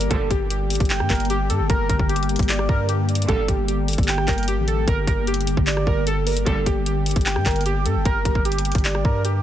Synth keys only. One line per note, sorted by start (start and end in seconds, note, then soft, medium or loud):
0.11 0.28 A4 medium
0.31 0.48 G4 medium
0.51 1.06 G4 medium
1.10 1.28 A#4 medium
1.30 1.48 G4 loud
1.50 1.67 A4 medium
1.70 1.87 A#4 loud
1.89 2.07 A#4 medium
2.09 2.65 G4 medium
2.69 2.87 A#4 medium
2.89 3.07 G4 medium
3.28 3.46 A4 loud
3.49 3.66 G4 medium
3.68 4.24 G4 medium
4.28 4.46 A#4 medium
4.48 4.66 G4 medium
4.68 4.85 A4 medium
4.88 5.05 A#4 loud
5.08 5.25 A#4 medium
5.27 5.83 G4 medium
5.87 6.05 A#4 medium
6.07 6.24 A4 medium
6.26 6.44 A#4 medium
6.46 6.64 A4 loud
6.66 6.84 G4 medium
6.86 7.42 G4 medium
7.46 7.64 A#4 medium
7.66 7.83 G4 medium
7.86 8.03 A4 medium
8.05 8.23 A#4 loud
8.25 8.43 A#4 medium
8.45 9.01 G4 medium
9.05 9.22 A#4 medium
9.25 9.42 G4 medium